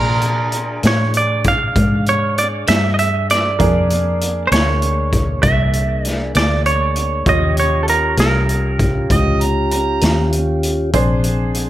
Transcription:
0.00 0.81 A#2 medium
0.00 3.55 D4 soft
0.00 3.56 D4 medium
0.00 3.55 G#4 soft
0.00 3.56 G#4 medium
0.00 0.87 A#4 medium
0.00 3.55 C6 medium
0.22 closed hi-hat soft
0.52 closed hi-hat medium
0.83 1.73 A2 medium
0.83 snare loud
0.83 closed hi-hat medium
0.87 1.17 C#5 medium
1.14 1.48 D5 medium
1.14 closed hi-hat soft
1.44 2.04 F5 medium
1.44 kick medium
1.44 closed hi-hat medium
1.76 2.65 G#2 medium
1.76 kick medium
1.76 closed hi-hat medium
2.06 2.38 C#5 medium
2.06 closed hi-hat soft
2.38 2.47 D5 medium
2.38 closed hi-hat medium
2.67 3.58 G2 medium
2.67 2.93 E5 medium
2.67 snare medium
2.67 closed hi-hat medium
2.94 2.99 D#5 medium
2.99 3.30 E5 medium
2.99 closed hi-hat medium
3.30 4.42 D5 medium
3.30 snare soft
3.30 closed hi-hat medium
3.59 4.49 F2 medium
3.59 7.24 A#3 medium
3.59 7.23 D4 soft
3.59 7.24 D4 medium
3.59 7.23 G#4 soft
3.59 7.24 G#4 medium
3.59 7.23 A#4 medium
3.59 kick medium
3.59 closed hi-hat medium
3.90 closed hi-hat medium
4.21 closed hi-hat medium
4.47 4.52 C5 medium
4.52 5.41 D2 medium
4.52 5.42 C#5 medium
4.52 snare loud
4.52 closed hi-hat medium
4.82 closed hi-hat medium
5.13 kick medium
5.13 closed hi-hat medium
5.43 6.32 C2 medium
5.43 6.06 E5 medium
5.43 kick medium
5.43 closed hi-hat medium
5.73 closed hi-hat soft
6.05 6.31 D5 medium
6.05 snare soft
6.05 closed hi-hat medium
6.35 7.25 D2 medium
6.35 6.66 D5 medium
6.35 snare loud
6.35 closed hi-hat medium
6.66 7.29 C#5 medium
6.66 closed hi-hat soft
6.96 closed hi-hat soft
7.26 8.16 D#2 medium
7.26 10.91 C#4 medium
7.26 10.90 F4 soft
7.26 10.91 F4 medium
7.26 10.90 G4 medium
7.26 10.90 G4 soft
7.26 10.90 C#5 medium
7.26 7.59 D#5 medium
7.26 kick loud
7.26 closed hi-hat medium
7.57 7.81 C#5 medium
7.57 closed hi-hat medium
7.83 7.89 A4 soft
7.88 8.19 A#4 medium
7.88 closed hi-hat medium
8.17 9.07 C2 medium
8.17 9.38 A#4 medium
8.17 snare medium
8.17 closed hi-hat medium
8.49 closed hi-hat medium
8.79 kick medium
8.79 closed hi-hat medium
9.10 9.99 C#2 medium
9.10 9.43 D#5 medium
9.10 kick medium
9.10 closed hi-hat medium
9.41 9.71 A#5 medium
9.41 closed hi-hat medium
9.71 10.32 A#5 medium
9.71 closed hi-hat medium
10.01 10.91 D#2 medium
10.01 snare medium
10.01 closed hi-hat medium
10.33 closed hi-hat medium
10.63 closed hi-hat soft
10.93 11.70 A#1 medium
10.93 11.70 C4 medium
10.93 11.70 D4 medium
10.93 11.70 G#4 medium
10.93 11.70 C5 medium
10.93 kick medium
10.93 closed hi-hat medium
11.24 closed hi-hat medium
11.55 closed hi-hat soft

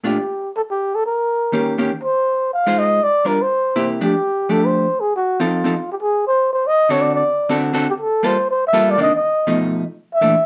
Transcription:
0.04 0.17 A#2 medium
0.04 0.17 A3 soft
0.04 0.17 D4 medium
0.04 0.17 F4 medium
0.04 0.51 G4 medium
0.57 0.62 A4 medium
0.71 0.97 G4 medium
0.95 1.04 A4 medium
1.06 1.75 A#4 medium
1.52 1.76 D#3 medium
1.52 1.76 A#3 medium
1.52 1.76 C#4 medium
1.52 1.77 G4 medium
1.78 1.90 D#3 medium
1.78 1.91 A#3 medium
1.78 1.91 C#4 medium
1.78 1.91 G4 medium
2.04 2.49 C5 medium
2.53 2.80 F5 medium
2.66 2.99 G#3 medium
2.66 2.99 D#4 medium
2.66 2.99 F4 soft
2.66 3.00 C5 medium
2.79 3.05 D#5 medium
3.03 3.29 D5 medium
3.25 3.38 G3 soft
3.25 3.39 D4 soft
3.25 3.39 F4 soft
3.25 3.39 A#4 soft
3.25 3.44 A#4 medium
3.42 3.91 C5 medium
3.76 4.00 C3 medium
3.76 4.00 A#3 medium
3.76 4.00 E4 medium
3.76 4.01 G4 medium
4.01 4.14 F3 soft
4.01 4.14 A3 soft
4.01 4.14 D4 medium
4.01 4.14 G4 soft
4.01 4.53 G4 medium
4.49 4.86 F3 soft
4.49 4.86 A3 medium
4.49 4.86 D4 soft
4.49 4.86 G4 medium
4.49 4.67 A4 medium
4.65 5.02 C5 medium
5.00 5.14 G#4 medium
5.16 5.42 F#4 medium
5.40 5.63 F3 medium
5.40 5.63 C4 medium
5.40 5.63 D#4 medium
5.40 5.89 F4 medium
5.40 5.63 A4 medium
5.64 5.73 F3 soft
5.64 5.73 C4 medium
5.64 5.74 D#4 medium
5.64 5.74 A4 medium
5.92 5.96 G4 medium
6.01 6.23 G#4 medium
6.27 6.48 C5 loud
6.53 6.69 C5 medium
6.67 6.93 D#5 loud
6.89 7.22 D3 medium
6.89 7.22 C4 medium
6.89 7.22 F#4 medium
6.89 7.22 A4 medium
6.89 7.03 C#5 medium
7.02 7.14 D5 medium
7.15 7.60 D5 medium
7.49 7.72 D3 medium
7.49 7.72 C4 medium
7.49 7.73 F#4 medium
7.49 7.73 A4 medium
7.73 7.86 D3 medium
7.73 7.86 C4 medium
7.73 7.86 F#4 medium
7.73 7.86 A4 medium
7.90 7.94 G4 medium
8.00 8.27 A4 medium
8.23 8.36 G3 medium
8.23 8.36 A#3 medium
8.23 8.36 F4 medium
8.23 8.36 A4 medium
8.23 8.49 C5 loud
8.51 8.63 C5 medium
8.67 8.92 E5 medium
8.73 8.97 G3 medium
8.73 8.97 A#3 medium
8.73 8.98 F4 medium
8.73 8.97 A4 medium
8.91 8.99 D5 medium
8.98 9.10 C3 medium
8.98 9.10 D#3 medium
8.98 9.11 A#3 medium
8.98 9.11 D4 medium
8.98 9.13 D#5 loud
9.15 9.59 D#5 medium
9.47 9.83 B2 medium
9.47 9.83 F3 medium
9.47 9.83 A3 medium
9.47 9.83 D#4 medium
10.14 10.46 E5 medium
10.21 10.34 A#2 medium
10.21 10.34 E3 medium
10.21 10.34 A3 medium
10.21 10.34 D4 medium

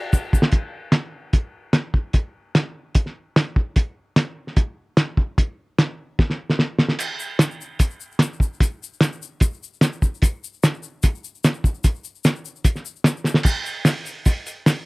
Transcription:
0.13 kick medium
0.13 shaker loud
0.33 kick loud
0.33 shaker medium
0.42 snare medium
0.52 kick loud
0.52 closed hi-hat medium
0.92 snare loud
0.92 closed hi-hat medium
1.33 kick loud
1.33 closed hi-hat medium
1.73 snare loud
1.73 closed hi-hat medium
1.94 kick medium
2.13 kick loud
2.13 closed hi-hat medium
2.55 snare loud
2.55 closed hi-hat medium
2.95 kick loud
2.95 closed hi-hat medium
3.06 snare soft
3.36 snare loud
3.36 closed hi-hat medium
3.56 kick medium
3.76 kick loud
3.76 closed hi-hat medium
4.16 snare loud
4.16 closed hi-hat medium
4.47 snare soft
4.56 kick loud
4.56 closed hi-hat medium
4.97 snare loud
4.97 closed hi-hat medium
5.17 kick medium
5.38 kick loud
5.38 closed hi-hat medium
5.78 snare loud
5.78 closed hi-hat medium
6.19 kick loud
6.19 snare medium
6.30 snare medium
6.50 snare medium
6.59 snare medium
6.79 snare loud
6.89 snare medium
6.99 closed hi-hat medium
6.99 crash medium
6.99 shaker medium
7.20 shaker medium
7.39 snare loud
7.39 closed hi-hat medium
7.39 shaker loud
7.51 shaker soft
7.61 shaker medium
7.79 kick loud
7.79 closed hi-hat medium
7.79 shaker loud
7.90 shaker soft
8.00 shaker medium
8.12 shaker soft
8.19 snare loud
8.19 closed hi-hat medium
8.19 shaker medium
8.33 shaker soft
8.40 kick medium
8.40 shaker medium
8.53 shaker soft
8.60 kick loud
8.60 closed hi-hat medium
8.60 shaker medium
8.83 shaker medium
8.93 shaker soft
9.01 snare loud
9.01 closed hi-hat medium
9.01 shaker loud
9.12 shaker soft
9.22 shaker medium
9.40 kick loud
9.40 closed hi-hat medium
9.40 shaker loud
9.54 shaker soft
9.63 shaker medium
9.73 shaker soft
9.81 snare loud
9.81 closed hi-hat medium
9.81 shaker loud
9.93 shaker soft
10.02 kick medium
10.02 shaker medium
10.14 shaker soft
10.22 kick loud
10.22 closed hi-hat medium
10.22 shaker loud
10.44 shaker medium
10.53 shaker soft
10.63 snare loud
10.63 closed hi-hat medium
10.63 shaker loud
10.74 shaker soft
10.83 shaker medium
11.03 kick loud
11.03 closed hi-hat medium
11.03 shaker loud
11.15 shaker soft
11.24 shaker medium
11.35 shaker soft
11.44 snare loud
11.44 closed hi-hat medium
11.44 shaker medium
11.54 shaker soft
11.64 kick medium
11.64 shaker medium
11.74 shaker soft
11.84 kick loud
11.84 closed hi-hat medium
11.84 shaker medium
11.95 shaker soft
12.04 shaker medium
12.15 shaker soft
12.24 snare loud
12.24 closed hi-hat medium
12.24 shaker loud
12.36 shaker soft
12.45 shaker medium
12.56 shaker soft
12.64 kick loud
12.64 closed hi-hat medium
12.64 shaker loud
12.76 snare soft
12.76 shaker soft
12.85 shaker medium
12.96 shaker soft
13.04 snare loud
13.04 closed hi-hat medium
13.04 shaker medium
13.17 shaker soft
13.24 snare medium
13.24 shaker medium
13.34 snare medium
13.34 shaker soft
13.43 kick loud
13.43 crash loud
13.43 shaker medium
13.63 open hi-hat medium
13.63 shaker medium
13.85 snare loud
13.85 open hi-hat medium
13.85 shaker medium
14.05 open hi-hat medium
14.05 shaker medium
14.26 kick loud
14.26 open hi-hat medium
14.26 shaker loud
14.47 open hi-hat medium
14.47 shaker medium
14.66 snare loud
14.66 open hi-hat medium
14.66 shaker loud

